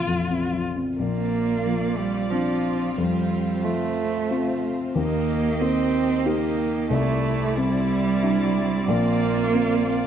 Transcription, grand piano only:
Already playing: A#1 E3 F3 C4
0.07 F2
0.30 C4
0.53 F3
0.76 C4
0.99 A#1
1.65 F3
2.32 C4 D4
2.98 F2
3.64 F3
4.30 C4 F4
4.95 D#2
5.61 A#3
6.26 D#4 G4
6.90 C2
7.57 C4
8.23 D4 E4
8.88 A#1
9.53 C4

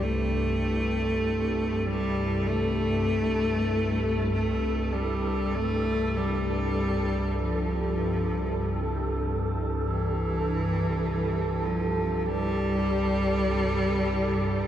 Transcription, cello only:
0.03 A3
1.86 G3
2.47 A3
4.33 A3
4.93 G3
5.55 A3
6.17 G3
7.39 F3
9.83 E3
11.64 F3
12.26 G3

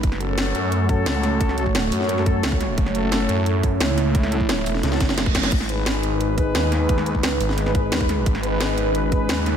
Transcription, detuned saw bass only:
0.03 F#1
0.55 F#2
1.06 C#2
1.92 F#2
2.43 C#2
2.78 F#1
3.29 F#2
3.81 C#2
4.66 E1
4.83 C#2
5.01 F#1
5.35 F#1
5.52 G#1
6.03 G#1
6.55 D#2
7.15 D2
7.41 G#1
7.92 D#2
8.26 G#1
8.78 G#1
9.29 D#2

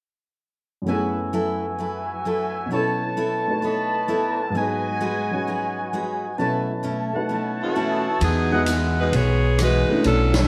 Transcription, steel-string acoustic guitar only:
0.87 F#3 E4 A4 B4
1.33 F#3 E4 A4 B4
1.79 F#3 E4 A4 B4
2.25 F#3 E4 A4 B4
2.71 B3 E4 A4 C#5
3.17 B3 E4 A4 C#5
3.62 B3 E4 A4 C#5
4.08 B3 E4 A4 C#5
4.55 G#3 D#4 F#4 B4
5.01 G#3 D#4 F#4 B4
5.47 G#3 D#4 F#4 B4
5.93 G#3 D#4 F#4 B4
6.38 B2 A3 C#4 E4
6.83 B2 A3 C#4 E4
7.29 B2 A3 C#4 E4
7.76 B2 A3 C#4 E4
8.20 E3 G#3 D#4 F#4
8.67 E3 G#3 D#4 F#4
9.13 E3 G#3 D#4 F#4
9.60 E3 G#3 D#4 F#4
10.04 B2 A3 D4 E4

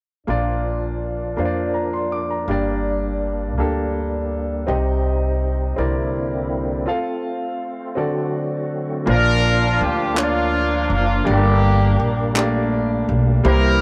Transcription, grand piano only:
0.27 A#2 A#3 D4 F4 D5
1.37 A#3 D4 F4 C5
1.45 D5
1.74 A#5
1.93 C6
2.12 D6
2.30 A#5
2.48 G2 A#3 D4 G4 D5
3.58 A#3 D4 G4 A4
4.67 C3 C4 D#4 G4 D#5
5.76 C3 C4 E4 A#4 D5
6.86 C4 F4 A4 F5
7.95 D3 C4 F#4 A4 D5
9.06 A#2 A#3 D4 F4 C5
9.15 D5
10.15 A#3 D4 F4 C#5
10.23 D5
11.24 G2 A#3 D4 G4 D5
12.34 A3 D4 G4 D5
12.41 A#3
13.44 C3 A#3 E4 G4 C5

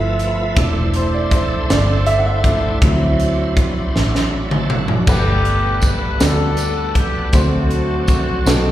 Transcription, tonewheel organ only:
Already playing: F3 A3 E4 B4
0.58 A3 D4 E4 C5
2.82 F#3 D4 E4 C5
4.49 C5 A5
4.70 A4 F#5
4.90 F#4 D5
5.07 G3 B3 A4 F#5
7.35 F#3 C4 D4 A4
8.47 B2 G3 D#4 A4

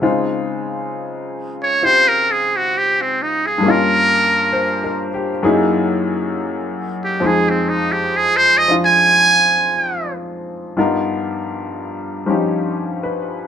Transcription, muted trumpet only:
1.63 C#5
1.85 C5
2.08 A#4
2.31 G#4
2.56 F#4
2.78 G4
3.01 C4
3.22 D#4
3.46 G#4
3.70 A#4
7.05 G4
7.27 G#4
7.50 C4
7.69 D#4
7.92 G4
8.17 G#4
8.36 C5
8.58 D#5
8.85 G#5

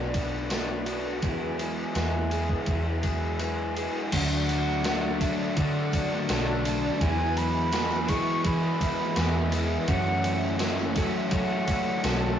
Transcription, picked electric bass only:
Already playing: B1
1.23 E2
1.96 E2
2.67 E2
4.13 D2
5.57 D3
6.30 B1
7.01 E2
8.45 E3
9.17 E2
9.88 F#2
11.32 F#3
12.04 B1

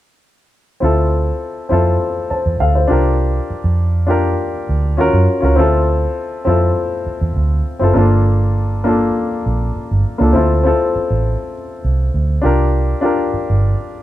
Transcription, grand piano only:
0.80 C4 E4 F4
0.84 A4
1.69 C4 E4 F4 A4
2.30 C5 A5
2.60 A4 F5
2.75 E4 C5
2.88 D4 F4 G4
2.92 A#4
4.07 D4 F4 G4 A#4
4.97 C#4 F4 F#4 A#4
5.41 C#4 F4 F#4
5.45 A#4
5.55 C4 E4 F4
5.60 A4
6.45 C4 E4 F4 A4
7.79 C4 E4 F4
7.84 A4
7.94 A#3 D4 F4 A4
8.84 A#3 D4 F4 A4
10.18 A#3 D4 F4 A4
10.33 C4 E4 F4 A4
10.63 C4 E4 F4 A4
12.42 D4 F4 G4 A#4
13.01 D4 F4 G4 A#4

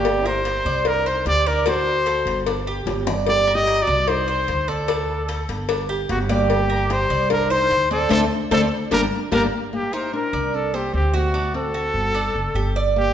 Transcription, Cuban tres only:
Already playing: D5
0.26 A#4
0.66 D5
1.06 C5
1.46 D5
1.67 D4
2.07 A4
2.47 D4
2.67 G4
3.07 D5
3.47 A#4
3.87 D5
4.28 C5
4.68 D5
4.88 D4
5.28 A4
5.69 D4
5.89 G4
6.29 D5
6.70 A#4
7.10 D5
7.50 C5
7.91 D5
8.10 A4 C5 D5
8.51 A4 C5 D5
8.92 D4 G4 A#4
9.32 D4 G4 A#4
9.93 A#4
10.33 D5
10.74 C5
11.14 F#4
11.34 D4
11.74 F#4
12.15 D4
12.55 G4
12.76 D5

